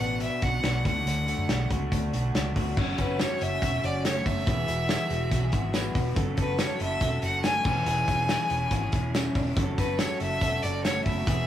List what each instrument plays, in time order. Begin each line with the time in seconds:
Already playing: clean electric guitar B2 B3 D4, violin F#5
0.00 fingered electric bass A1, overdriven electric guitar B3 D4 F#4
0.20 clean electric guitar D4, violin E5, closed hi-hat
0.42 fingered electric bass B1, overdriven electric guitar D4 F#4, violin F#5, kick, closed hi-hat
0.46 overdriven electric guitar B3
0.62 fingered electric bass B1, overdriven electric guitar F#3 B3 D4 F#4, snare, closed hi-hat
0.85 fingered electric bass D2, overdriven electric guitar D3 E3 A3 D4 F#4, violin F#5, kick, closed hi-hat
1.06 fingered electric bass D2, clean electric guitar D3, closed hi-hat
1.26 overdriven electric guitar D4 F#4, closed hi-hat
1.30 overdriven electric guitar A3
1.38 fingered electric bass F#2
1.48 fingered electric bass B1, overdriven electric guitar E3 A3 D4, snare, closed hi-hat
1.53 overdriven electric guitar F#4
1.70 fingered electric bass C#2, overdriven electric guitar A3 D4 F#4, kick, closed hi-hat
1.92 fingered electric bass D2, clean electric guitar D4, kick, closed hi-hat
2.13 fingered electric bass B1, overdriven electric guitar A3 D4 F#4, closed hi-hat
2.35 fingered electric bass C#2, overdriven electric guitar E3 A3 D4 F#4, snare, closed hi-hat
2.56 fingered electric bass D2, clean electric guitar F#4, kick, open hi-hat
2.77 fingered electric bass F#1, overdriven electric guitar F#2 C#3 F#3 A3 C#4 F#4, kick, crash
2.98 fingered electric bass F#1, overdriven electric guitar F#3 A3 C#4 F#4, violin B4, kick, closed hi-hat, tambourine
3.19 overdriven electric guitar F#2 C#3 F#3 A3 C#4 F#4, violin C#5, snare, closed hi-hat, tambourine
3.39 fingered electric bass F#1, overdriven electric guitar F#3 A3 C#4 F#4, violin E5, closed hi-hat
3.62 fingered electric bass E1, overdriven electric guitar F#3 A3 C#4 F#4, kick, closed hi-hat, tambourine
3.82 fingered electric bass F#1, overdriven electric guitar F#3 A3 C#4 F#4, violin D5, closed hi-hat, tambourine
4.04 overdriven electric guitar F#2 C#3 F#3 A3 C#4 F#4, violin C#5, snare, closed hi-hat, tambourine
4.26 fingered electric bass F#1, clean electric guitar C#4, violin E5, kick, open hi-hat, tambourine
4.46 fingered electric bass E1, overdriven electric guitar E3 B3 F#4 G#4, kick, closed hi-hat, tambourine
4.67 fingered electric bass E1, overdriven electric guitar B3 F#4 G#4, closed hi-hat, tambourine
4.87 overdriven electric guitar E3 B3 F#4 G#4, snare, closed hi-hat, tambourine
5.09 fingered electric bass E1, overdriven electric guitar F#4 G#4, closed hi-hat, tambourine
5.13 overdriven electric guitar B3
5.30 fingered electric bass B1, overdriven electric guitar E3 B3 F#4 G#4, kick, closed hi-hat, tambourine
5.43 clean electric guitar G#4
5.50 fingered electric bass G#1, overdriven electric guitar B3 F#4 G#4, kick, closed hi-hat, tambourine
5.72 overdriven electric guitar E3 B3 F#4 G#4, snare, closed hi-hat, tambourine
5.95 fingered electric bass E1, clean electric guitar F#4, kick, open hi-hat, tambourine
6.15 fingered electric bass F#1, overdriven electric guitar F#2 C#3 F#3 A3 F#4 A4, kick, closed hi-hat
6.36 fingered electric bass F#1, overdriven electric guitar F#3 A3 F#4 A4, kick, closed hi-hat, tambourine
6.41 violin B4
6.58 overdriven electric guitar F#2 C#3 F#3 A3 F#4 A4, violin C#5, snare, closed hi-hat, tambourine
6.80 fingered electric bass F#1, overdriven electric guitar A3 F#4 A4, clean electric guitar E4, violin E5, closed hi-hat
6.84 overdriven electric guitar F#3
6.92 clean electric guitar F#4
7.00 fingered electric bass E1, overdriven electric guitar F#3 A3 F#4 A4, kick, closed hi-hat, tambourine
7.22 fingered electric bass F#1, overdriven electric guitar F#3 A3 F#4 A4, violin F#5, closed hi-hat, tambourine
7.42 overdriven electric guitar F#2 C#3 F#3 A3 F#4 A4, violin G#5, snare, closed hi-hat, tambourine
7.63 fingered electric bass E1, overdriven electric guitar E3 C#4 E4 G#4, violin G#5, kick, tambourine, crash
7.86 fingered electric bass E1, clean electric guitar E3 G#4, closed hi-hat
8.06 fingered electric bass E1, overdriven electric guitar C#4 E4 G#4, kick, closed hi-hat, tambourine
8.28 overdriven electric guitar E3 C#4 E4 G#4, snare, closed hi-hat, tambourine
8.50 fingered electric bass E1, overdriven electric guitar C#4 E4 G#4, closed hi-hat, tambourine
8.70 fingered electric bass G#1, overdriven electric guitar E3 C#4 E4 G#4, clean electric guitar F#4, kick, closed hi-hat, tambourine
8.83 clean electric guitar G#4
8.92 fingered electric bass E1, overdriven electric guitar E4 G#4, kick, closed hi-hat, tambourine
8.97 overdriven electric guitar C#4
9.13 overdriven electric guitar E3 C#4 E4 G#4, snare, closed hi-hat, tambourine
9.35 fingered electric bass E1, clean electric guitar D4, kick, open hi-hat, tambourine
9.47 clean electric guitar E4
9.57 fingered electric bass F#1, overdriven electric guitar F#2 C#3 F#3 A3 F#4 A4, kick, closed hi-hat
9.78 fingered electric bass F#1, overdriven electric guitar A3 F#4 A4, violin B4, kick, closed hi-hat, tambourine
9.83 overdriven electric guitar F#3
9.99 overdriven electric guitar F#2 C#3 F#3 A3 F#4, violin C#5, snare, closed hi-hat, tambourine
10.03 overdriven electric guitar A4
10.20 fingered electric bass F#1, overdriven electric guitar F#3 A3 F#4 A4, violin E5, closed hi-hat
10.41 fingered electric bass E1, overdriven electric guitar F#3 A3 F#4, kick, closed hi-hat, tambourine
10.45 overdriven electric guitar A4
10.63 fingered electric bass F#1, overdriven electric guitar F#3 A3 F#4 A4, violin D5, closed hi-hat, tambourine
10.84 overdriven electric guitar F#2 C#3 F#3 A3 F#4 A4, violin C#5, snare, closed hi-hat, tambourine
11.04 fingered electric bass F#1, clean electric guitar E4, violin E5, kick, open hi-hat, tambourine
11.17 clean electric guitar F#4
11.26 fingered electric bass E1, overdriven electric guitar E3 B3 F#4 G#4, kick, closed hi-hat, tambourine